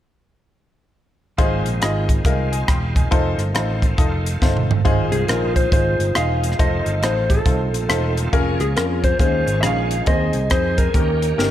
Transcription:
1.37 G#1 G#2 D#3 G#3 C4 D#4 F4 G#4 C5, kick, closed hi-hat
1.65 A#1, closed hi-hat
1.82 G#1 D#4 F4 G#4 D#5, cross-stick, closed hi-hat
2.09 kick, closed hi-hat
2.25 C2 D#4 F4 G#4 A#4, kick, closed hi-hat
2.52 D#5 G#5, closed hi-hat
2.68 E1 G5 C6, kick, cross-stick, closed hi-hat
2.96 D#5 G#5, kick, closed hi-hat
3.11 F1 A3 D#4 F4 A4 C5, kick, closed hi-hat
3.38 G1, cross-stick, closed hi-hat
3.54 A1 D#4 F4 A4 C5, cross-stick, closed hi-hat
3.82 kick, closed hi-hat
3.98 F1 D#4 F4 A4 D#5, kick, closed hi-hat
4.26 closed hi-hat
4.42 G1 D#4 F4 A4 C5, kick, snare
4.57 mid tom
4.71 floor tom
4.85 G#1 G#2 D#3 G#3 C4 D#4 F4 G#4 C5, kick, closed hi-hat
5.12 C2 G#4, closed hi-hat
5.28 A#1 D#4 F4 G#4 A#4 C5, cross-stick, closed hi-hat
5.56 C5, kick, closed hi-hat
5.72 G#1 D#4 F4 G#4 C5, kick, closed hi-hat
5.99 G1, closed hi-hat
6.15 E1 D#4 F4 G#4 D#5 F5, cross-stick, closed hi-hat
6.44 closed hi-hat
6.52 cross-stick
6.59 F1 A3 C4 D#4 F4 A4 C5 D#5, kick, closed hi-hat
6.86 G1, closed hi-hat
7.02 A1 D#4 F4 A4 C5 D#5, cross-stick, closed hi-hat
7.30 A4, kick, closed hi-hat
7.45 C2 D#4 F4 A4 C5, kick, closed hi-hat
7.73 A#1, closed hi-hat
7.89 E1 D#4 F4 A4 C5, cross-stick, closed hi-hat
8.17 closed hi-hat
8.33 F1 F3 G#3 A#3 C#4 F4 G#4 A#4, kick, closed hi-hat
8.60 C#2 G#4, cross-stick, closed hi-hat
8.76 F2 C#4 F4 G#4 A#4, cross-stick, closed hi-hat
9.04 C5, kick, closed hi-hat
9.19 D#2 D#3 G#3 C#4 D#4 F4 G#4 C5, kick, closed hi-hat
9.46 G#1, closed hi-hat
9.61 A#1 C#4 D#4 F4 G#4 E5 F5, cross-stick, closed hi-hat
9.91 closed hi-hat
10.06 D#2 D#3 C4 D#4 G#4 C5 D#5, kick, closed hi-hat
10.33 C2, closed hi-hat
10.50 F2 C4 D#4 G#4 C5 D#5, kick, cross-stick, closed hi-hat
10.78 A#4, kick, closed hi-hat
10.94 D#2 D#3 A#3 C#4 D#4 G4 A#4, kick, closed hi-hat
11.22 closed hi-hat
11.38 G1 C#4 D#4 G4 A#4, snare

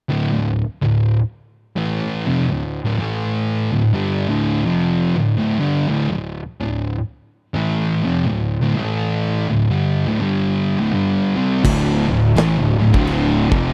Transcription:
0.09 D2 A2
0.33 D2 A2
0.82 D2 A2
1.76 A2 E3 A3
2.26 F2 C3
2.48 D2 A2
2.85 D2 A2
2.98 A2 E3 A3
3.71 D2 A2
3.93 G2 D3 G3
4.29 D2 A2 D3
4.65 F2 C3 F3
5.15 D2 A2
5.37 D2 A2
5.59 G2 D3 G3
5.88 D2 A2
6.10 D2 A2
6.60 D2 A2
7.55 A2 E3 A3
8.04 F2 C3
8.27 D2 A2
8.62 D2 A2
8.77 A2 E3 A3
9.49 D2 A2
9.70 G2 D3 G3
10.07 D2 A2
10.21 G2 D3 G3
10.79 D2 A2
10.93 G2 D3 G3
11.36 C3 G3 C4
11.64 D1 D2 A2 D3, kick, crash
12.09 D1 D2 A2
12.36 A1 A2 E3, snare, crash
12.58 D1 D2 A2
12.79 D1 D2 A2
12.93 D1 D2 A2 D3, kick
13.07 crash
13.51 F1 F2 C3 F3, kick

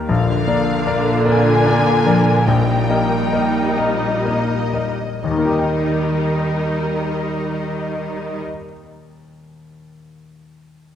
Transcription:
Already playing: D#3 A#3 G4 A#4 D#5 G5
0.09 A#1 A#2 D3 D4 F4 A#4 F5
0.47 A#3 D5
0.86 A#3 A#4 D5
1.25 C4 A#4 D5 G#5
1.65 A#3 D5
2.05 F3 A#4 D5
2.46 A#1 A#2 G3 D#4 G5
2.89 A#3 D#5
3.32 A#3 A#4 D#5
3.77 C4 A#4 D#5
4.24 A#3 D#5
4.73 G3 A#4 D#5
5.23 D#2 D#3 G3 D#4 A#4 D#5
5.30 D#3 A#3
5.37 A#3 D#4
5.44 G4
5.51 D#5
5.58 G5

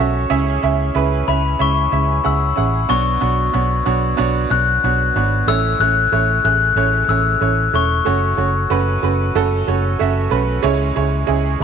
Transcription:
Already playing: C#4 C#5 F#5 G#5
0.00 B1 F#4 A4 E5
0.30 C#2 C#3 C#4 E4 G#4 E5
0.63 C#2 C#4 E4 G#4 E5
0.95 C#2 C#4 E4 G#4 B4
1.28 C#2 C#4 E4 G#4 E5 B5
1.59 C#2 C#4 E4 G#4 E5 C#6
1.92 C#2 C#4 E4 G#4 E5
2.24 C#2 C#4 E4 G#4 F#5 E6
2.56 A1 C#4 E4 G#4 F#5
2.89 B1 B2 B3 D4 F#4 C#5 C#6
3.21 B1 B3 D4 F#4 C#5
3.53 B1 B3 D4 F#4 C#5
3.86 B1 B3 D4 F#4 C#5
4.17 B1 B3 D4 F#4 C#5
4.50 B1 B3 D4 F#4 C#5 F#6
4.84 B1 B3 D4 F#4 C#5
5.15 G#1 B3 D4 F#4 C#5
5.47 A1 A2 A3 C#4 E4 C#5 E6
5.80 A1 A3 C#4 E4 C#5 F#6
6.12 A1 A3 C#4 E4 C#5
6.44 A1 A3 C#4 E4 G#4 F#6
6.76 A1 A3 C#4 E4 C#5
7.08 A1 A3 C#4 E4 C#5 E6
7.41 A1 A3 C#4 E4 C#5
7.73 E1 A3 C#4 E4 C#5 C#6
8.05 F#1 A3 C#4 F#4 C#5
8.37 F#1 A3 C#4 F#4 C#5
8.70 F#1 A3 C#4 F#4 B4
9.03 F#1 A3 C#4 F#4 B4
9.35 F#1 A3 C#4 F#4 A4
9.67 F#1 A3 C#4 F#4 C#5
9.99 F#1 A3 C#4 F#4 E5
10.30 B1 A3 C#4 F#4 B4
10.62 C#2 C#3 G#3 C#4 E4 C#5
10.96 C#2 G#3 C#4 E4 C#5
11.27 C#2 G#3 C#4 E4 G#4
11.60 C#2 G#3 C#4 E4

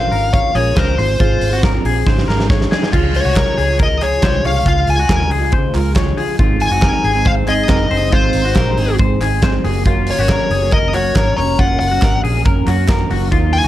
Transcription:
Already playing: C5 F5
0.00 C#4 F4 A#4
0.12 G#1 A#4, open hi-hat
0.33 C#5 F5, kick, closed hi-hat
0.54 A#1 G#3 C#4 F4 G#4 A#4 C#5, open hi-hat
0.75 C#2 G#3 C#4 A#4 C5, kick, snare, closed hi-hat
0.97 G#1 G#3 C4 F4 G#4 C5, open hi-hat
1.19 G#1 G#3 C4 F4 G#4 C5, kick
1.41 G#1, open hi-hat
1.51 C4 F4 F#4 G#4
1.63 A#4, kick, snare, closed hi-hat
1.73 C4 F4 G#4
1.85 A#1 G#4, open hi-hat
2.06 G#1 G#2 C#3 G#3 C#4 D#4 G#4 C5, kick, snare
2.18 snare
2.28 G#1 G#3 C#4 D#4 G#4 A#4, snare
2.40 snare
2.50 G#3 C#4 D#4 G#4 C#5, kick, snare
2.61 snare
2.71 G#3 C#4 D#4 G#4, snare
2.83 snare
2.93 C#2 C#3 F3 G#3 F4 G#4, kick, crash
3.14 C#5, open hi-hat
3.25 C2 G#3 F4 F#4 G#4
3.36 A#4, kick, snare, clap
3.58 C#2 G#4, open hi-hat
3.69 G#3 F4 G#4
3.79 A#4 D#5, kick, closed hi-hat
4.01 F3 G#3 F4 G#4 C#5, clap, open hi-hat
4.22 C2 F3 G#3 F4 G#4 C5, kick, snare, clap, closed hi-hat
4.44 C2 F3 G#3 F4 G#4 C#5 F5, open hi-hat
4.66 C#2 C#3 F3 G#3 F4 G#4 F5, kick, closed hi-hat
4.87 C#2 G#5, open hi-hat
4.98 G#3 F4 F#4 G#4
5.09 D#2 A#4, kick, snare, clap, closed hi-hat
5.31 C#2 G#4, open hi-hat
5.41 G#3 F4 G#4
5.52 C#3 C5, kick, closed hi-hat
5.74 C#2 F3 G#3 F4 G#4 A#4, clap, open hi-hat
5.95 F3 G#3 F4 G#4 C#5, kick, snare, clap, closed hi-hat
6.17 F3 G#3 F4 G#4, open hi-hat
6.38 G#1 G#2 D#3 G#3 C4 D#4 F4 G#4, kick, closed hi-hat
6.60 G#5, open hi-hat
6.71 F#1 G#3 C4 D#4 F#4
6.82 A#4, kick, snare, clap, closed hi-hat
7.04 G#1 G#4, open hi-hat
7.14 G#3 C4 D#4 G#4
7.25 C5 F5, kick, closed hi-hat
7.46 G#3 C4 D#4 G#4 D#5, clap, open hi-hat
7.67 F#1 G#3 C4 D#4 G#4 A#4, kick, snare, clap, closed hi-hat
7.89 F#1 G#3 C4 D#4 G#4 C5, open hi-hat
8.12 G#1 G#2 D#3 G#3 C4 D#4 F4 G#4 C5, kick, closed hi-hat
8.33 G#1, open hi-hat
8.45 G#3 D#4 F#4 G#4
8.56 A#1 A#4, kick, snare, clap
8.77 G#1 G#4, open hi-hat
8.88 G#3 C4 D#4 G#4
8.98 G#2 C5, kick, closed hi-hat
9.21 G#1 G#3 C4 D#4 G#4, clap, open hi-hat
9.42 G#3 C4 D#4 G#4 C5, kick, snare, clap, closed hi-hat
9.63 F#1 F#3 A#3 C#4 F#4 G#4 A#4, open hi-hat
9.85 F#2 C#3 F#3 A#3 C#4 F4 F#4, kick, closed hi-hat
10.07 C#5, open hi-hat
10.18 G#1 F#3 A#3 C#4 F#4
10.29 A#4, kick, snare, clap, closed hi-hat
10.50 F#1 G#4, open hi-hat
10.62 F#3 A#3 C#4 F#4
10.71 A#4 D#5, kick, closed hi-hat
10.94 F#3 A#3 C#4 F#4 C#5, clap, open hi-hat
11.15 G#1 F#3 A#3 C#4 F#4 A#4, kick, snare, clap, closed hi-hat
11.37 F1 F#3 A#3 C#4 F#4 C#5 A#5, open hi-hat
11.58 F#1 F#2 C#3 F#3 A#3 C#4 F4 F#4 F#5, kick, closed hi-hat
11.79 F#1 F#5, open hi-hat
11.91 F#3 A#3 C#4 F#4
12.02 G#1 A#4, kick, snare, clap, closed hi-hat
12.24 A#1 G#4, open hi-hat
12.35 F#3 A#3 C#4 F#4
12.45 F#2 A#4, kick, closed hi-hat
12.66 F#2 F#3 A#3 C#4 F#4, clap, open hi-hat
12.88 F#3 A#3 C#4 F#4 A#4, kick, snare, clap, closed hi-hat
13.10 F#1 F#3 A#3 C#4 F#4, open hi-hat
13.31 D#2 D#3 F#3 A#3 D#4 F4, kick, closed hi-hat
13.53 G#5, open hi-hat
13.64 C#2 F4 F#4

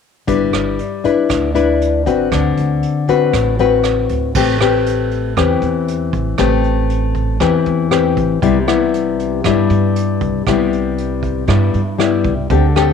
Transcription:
0.27 G1 G3 D4 E4 B4, kick, closed hi-hat
0.53 G1, cross-stick, closed hi-hat
0.79 closed hi-hat
1.04 D4 E4 B4, kick, closed hi-hat
1.29 D2 D3, kick, cross-stick, closed hi-hat
1.55 D4 E4 B4, closed hi-hat
1.81 closed hi-hat
2.06 G1 C4 F#4 B4, kick, closed hi-hat
2.32 D2 D3, kick, cross-stick, closed hi-hat
2.57 D2, closed hi-hat
2.83 closed hi-hat
3.08 C4 F#4 B4, kick, closed hi-hat
3.33 A1 A2, kick, cross-stick, closed hi-hat
3.59 C4 F#4 B4, closed hi-hat
3.84 cross-stick, closed hi-hat
4.09 D2, kick, closed hi-hat
4.35 A1 A3 C4 G4 B4, kick, crash
4.60 C4 G4 B4, cross-stick, closed hi-hat
4.86 closed hi-hat
5.11 closed hi-hat
5.37 E2 E3 C4 G4 B4, kick, cross-stick, closed hi-hat
5.62 E2, closed hi-hat
5.88 closed hi-hat
6.13 A1, kick, closed hi-hat
6.38 A1 A3 C4 G4 B4, kick, cross-stick, closed hi-hat
6.64 closed hi-hat
6.90 closed hi-hat
7.15 kick, closed hi-hat
7.40 E2 E3 C4 G4 B4, kick, cross-stick, closed hi-hat
7.65 E2, closed hi-hat
7.91 C4 G4 B4, cross-stick, closed hi-hat
8.17 A1, kick, closed hi-hat
8.42 C2 C3 G3 B3 E4, kick, closed hi-hat
8.67 G3 B3 E4, cross-stick, closed hi-hat
8.94 closed hi-hat
9.19 closed hi-hat
9.44 G2 G3 B3 E4, kick, cross-stick, closed hi-hat
9.70 G2, closed hi-hat
9.96 closed hi-hat
10.21 C2, kick, closed hi-hat
10.47 C2 C3 G3 B3 E4, kick, cross-stick, closed hi-hat
10.73 closed hi-hat
10.98 closed hi-hat
11.23 kick, closed hi-hat
11.48 G2 G3 B3 E4, kick, cross-stick, closed hi-hat
11.74 G2, closed hi-hat
11.99 G3 B3 E4, cross-stick, closed hi-hat
12.24 C2, kick, closed hi-hat
12.50 D2 D3 C4 G4 A4, kick, closed hi-hat
12.76 C4 G4 A4, cross-stick, closed hi-hat

